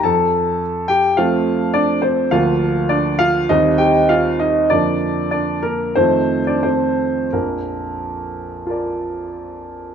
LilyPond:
<<
  \new Staff \with { instrumentName = "Grand piano" } { \time 4/4 \key bes \major \tempo 4 = 98 << { <a' a''>4. <g' g''>8 <f' f''>4 <d' d''>8 <c' c''>8 | <f' f''>4 <d' d''>8 <f' f''>8 <ees' ees''>8 <g' g''>8 <f' f''>8 <ees' ees''>8 | <d' d''>4 <d' d''>8 <bes bes'>8 <c' c''>8. <d' d''>16 <c' c''>4 | bes'1 | } \\ { r1 | r1 | r1 | r2 <f' bes' d''>2 | } >> }
  \new Staff \with { instrumentName = "Grand piano" } { \clef bass \time 4/4 \key bes \major f,2 <f a c'>2 | <d, f bes d'>2 <ees, g c'>2 | <f, d f bes>2 <f, ees f a>2 | <bes,, f,>1 | }
>>